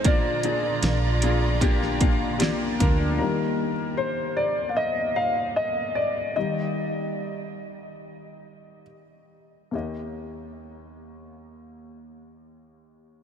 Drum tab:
HH |x-x-x-x-x-x-x-x-|----------------|----------------|----------------|
SD |----o----o--o---|----------------|----------------|----------------|
BD |o-------o-o---o-|----------------|----------------|----------------|